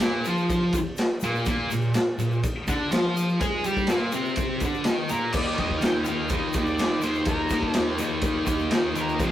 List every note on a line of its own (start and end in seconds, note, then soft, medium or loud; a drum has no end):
0.00 0.25 A#2 loud
0.00 0.26 A#3 loud
0.00 snare loud
0.00 ride loud
0.00 shaker medium
0.25 0.74 F3 medium
0.25 0.75 F4 medium
0.25 ride medium
0.25 shaker medium
0.37 shaker soft
0.50 kick medium
0.50 ride medium
0.50 shaker medium
0.73 muted distorted electric guitar stroke medium
0.73 kick medium
0.73 ride medium
0.73 shaker medium
0.97 snare loud
0.97 ride medium
0.97 shaker medium
1.21 1.45 A#2 medium
1.21 1.46 A#3 loud
1.21 ride medium
1.21 shaker medium
1.35 shaker soft
1.45 1.70 A#2 medium
1.45 1.71 A#3 loud
1.45 kick loud
1.45 ride medium
1.45 shaker medium
1.71 1.90 A#2 medium
1.71 ride medium
1.71 shaker loud
1.81 shaker soft
1.94 snare loud
1.94 ride loud
1.94 shaker medium
2.19 2.39 A#2 medium
2.19 ride medium
2.19 shaker medium
2.31 shaker soft
2.43 kick loud
2.43 ride medium
2.43 shaker medium
2.68 2.91 D3 medium
2.68 2.92 D4 loud
2.68 kick medium
2.68 ride medium
2.68 shaker medium
2.91 3.40 F3 medium
2.91 3.40 F4 loud
2.91 snare loud
2.91 ride loud
2.91 shaker medium
3.17 ride medium
3.17 shaker medium
3.29 shaker soft
3.40 3.64 G#3 medium
3.40 3.64 G#4 loud
3.40 kick loud
3.40 ride loud
3.40 shaker medium
3.64 3.88 G3 medium
3.64 3.89 G4 loud
3.64 ride medium
3.64 shaker medium
3.77 kick medium
3.77 shaker soft
3.87 4.13 A#2 loud
3.87 4.13 A#3 loud
3.87 snare loud
3.87 ride loud
3.87 shaker medium
4.12 4.61 C3 medium
4.12 4.62 C4 loud
4.12 ride medium
4.12 shaker medium
4.25 shaker soft
4.36 kick loud
4.36 ride medium
4.36 shaker medium
4.60 4.85 D3 loud
4.60 kick medium
4.60 ride medium
4.60 shaker medium
4.65 4.86 D4 loud
4.74 shaker soft
4.84 5.09 D#3 medium
4.84 5.10 D#4 medium
4.84 snare loud
4.84 ride medium
4.84 shaker medium
5.09 5.34 A#2 medium
5.09 5.34 A#3 medium
5.09 5.35 A#4 medium
5.09 ride medium
5.09 shaker medium
5.32 5.59 D#3 medium
5.32 5.59 A#3 loud
5.32 5.61 D#4 loud
5.32 5.58 D5 medium
5.32 kick loud
5.32 crash loud
5.32 shaker medium
5.58 5.83 D#3 medium
5.58 5.84 A#3 medium
5.58 5.85 D#4 medium
5.58 5.84 D#5 medium
5.58 kick medium
5.58 ride medium
5.71 kick medium
5.78 6.04 G5 medium
5.78 shaker medium
5.82 6.07 D#3 loud
5.82 6.09 A#3 medium
5.82 6.09 D#4 loud
5.82 snare loud
5.82 ride loud
6.04 6.30 D#3 medium
6.04 6.28 F5 loud
6.04 ride medium
6.04 shaker medium
6.09 6.32 A#3 medium
6.09 6.33 D#4 loud
6.29 6.54 D#3 medium
6.29 6.56 A#3 medium
6.29 6.64 D#5 loud
6.29 kick loud
6.29 ride medium
6.29 shaker medium
6.34 6.57 D#4 medium
6.53 6.78 D#3 medium
6.53 kick medium
6.53 ride medium
6.53 shaker medium
6.58 6.79 A#3 medium
6.58 6.79 D#4 medium
6.64 7.03 D5 medium
6.64 shaker soft
6.78 7.01 D#3 loud
6.78 7.02 A#3 loud
6.78 7.03 D#4 loud
6.78 snare loud
6.78 ride loud
6.78 shaker medium
7.02 7.25 D#3 medium
7.02 7.27 A#3 medium
7.02 7.27 D#4 medium
7.02 7.28 C5 medium
7.02 ride medium
7.02 shaker medium
7.14 shaker soft
7.25 7.52 D#3 medium
7.25 7.52 A#3 medium
7.25 7.52 D#4 loud
7.25 7.73 A#4 medium
7.25 kick loud
7.25 ride loud
7.25 shaker medium
7.50 7.74 D#3 medium
7.50 7.76 A#3 loud
7.50 7.75 D#4 medium
7.50 kick medium
7.50 ride medium
7.50 shaker medium
7.63 kick medium
7.74 7.99 D#3 loud
7.74 7.99 A#3 loud
7.74 8.00 D#4 loud
7.74 snare loud
7.74 ride loud
7.74 shaker medium
7.98 8.21 D#3 medium
7.98 8.22 A#3 medium
7.98 8.23 D#4 loud
7.98 ride medium
7.98 shaker medium
8.22 8.44 D#3 medium
8.22 8.45 A#3 medium
8.22 8.45 D#4 loud
8.22 kick loud
8.22 ride loud
8.22 shaker medium
8.45 8.70 D#3 medium
8.45 8.70 A#3 loud
8.45 8.71 D#4 loud
8.45 kick medium
8.45 ride medium
8.45 shaker medium
8.59 shaker soft
8.71 8.92 D#3 medium
8.71 8.93 A#3 loud
8.71 8.95 D#4 loud
8.71 snare loud
8.71 ride loud
8.71 shaker medium
8.94 9.17 D#3 medium
8.94 9.18 A#3 medium
8.94 9.18 D#4 medium
8.94 ride medium
8.94 shaker medium
9.01 9.21 A#4 medium
9.09 shaker soft
9.20 9.32 F2 medium
9.20 9.32 C3 medium
9.20 9.32 F3 loud
9.20 9.32 C5 loud
9.20 kick loud
9.20 ride medium
9.20 shaker medium